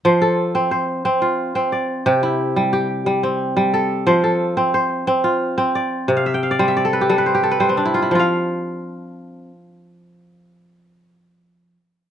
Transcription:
<<
  \new Staff \with { instrumentName = "Kora" } { \time 12/8 \key f \major \tempo 4. = 119 << { r1. | r1. | r1. | r16 f''16 e''16 g''16 f''16 d''16 c''16 e''16 d''16 a'16 b'16 g'16 a'16 b'16 c''16 g'16 a'16 b'16 c''16 c'16 d'16 e'16 f'16 e'16~ |
e'16 r1 r4. r16 | r1. | } \\ { c''8 a'4. c''4. f'4. d''4 | g'8 e'4. g'4. c'4. a'4 | c''8 a'4. c''4. f'4. d''4~ | d''8 r1 r4. |
<f f' f''>1.~ | <f f' f''>1. | } >> }
  \new Staff \with { instrumentName = "Kora" } { \clef bass \time 12/8 \key f \major f4 r8 c'4 r8 c'4 r8 c'4 r8 | c4 r8 g4 r8 g4 r8 g4 r8 | f4 r8 c'4 r8 c'4 r8 c'4 r8 | c4 r8 g4 r8 g4 r8 g4 r8 |
r1. | r1. | }
>>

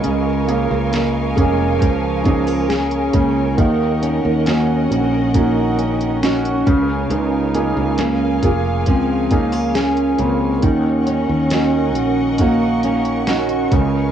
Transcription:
<<
  \new Staff \with { instrumentName = "String section" } { \time 4/4 \key ees \dorian \tempo 4 = 68 << { <bes' des'''>1~ | <bes' des'''>1~ | <bes' des'''>1 | <bes' des'''>1 | } \\ { <f'' aes''>1 | <ees'' ges''>2.~ <ees'' ges''>8 <f'' aes''>8~ | <f'' aes''>1 | <ees'' ges''>2.~ <ees'' ges''>8 <f'' aes''>8 | } >> }
  \new Staff \with { instrumentName = "Grand piano" } { \time 4/4 \key ees \dorian des8 <bes des' aes'>4 <bes des' aes'>4 <bes des' aes'>4 des8 | ees4 <des' ees' ges'>4 <des' ees' ges'>4 <des' ees' ges'>8 des8~ | des8 <bes des' aes'>4 <bes f' aes'>4 <bes des' aes'>4 des8 | ees4 <des' ees' ges'>4 <des' ees' ges'>4 <des' ees' ges'>8 des8 | }
  \new Staff \with { instrumentName = "Steel-string acoustic guitar" } { \time 4/4 \key ees \dorian des8 f'8 bes8 aes'8 f8 ees'16 f'16 aes'8 bes8 | ees8 des'8 bes8 ges'8 bes8 des'8 ges'8 des8 | des8 f'8 bes8 aes'8 f8 ees'16 f'16 aes'8 bes8 | ees8 des'8 bes8 ges'8 bes8 des'8 ges'8 des8 | }
  \new Staff \with { instrumentName = "Bass clarinet" } { \time 4/4 \key ees \dorian aes8 bes8 aes4 f4 des'4 | bes8 r8 des'4 ees'4 des'4 | ees'4 des'8 r8 c'8 bes8 des'8 c'8 | des'2 bes4 r8 aes8 | }
  \new Staff \with { instrumentName = "Fretless electric bass" } { \clef bass \time 4/4 \key ees \dorian des,8. des,8. f,,8 des,4. des,8 | ees,8. ees,8. bes,,2 des,8 | des,8. des,8. f,,8 des,4. des,8 | ees,8. ees,8. bes,,2 des,8 | }
  \new DrumStaff \with { instrumentName = "Drums" } \drummode { \time 4/4 hh8 hh8 <hh sn>8 <hh bd>8 <hh bd>8 <hh bd>16 hh16 <hh sn>16 hh16 <hh bd>8 | <hh bd>8 hh8 <hh sn>8 hh8 <hh bd>8 hh16 hh16 <hh sn>16 hh16 <hh bd>8 | hh8 hh8 <hh sn>8 <hh bd>8 <hh bd>8 <hh bd>16 hh16 <hh sn>16 hh16 hh8 | <hh bd>8 hh8 <hh sn>8 hh8 <hh bd>8 hh16 hh16 <hh sn>16 hh16 <hh bd>8 | }
>>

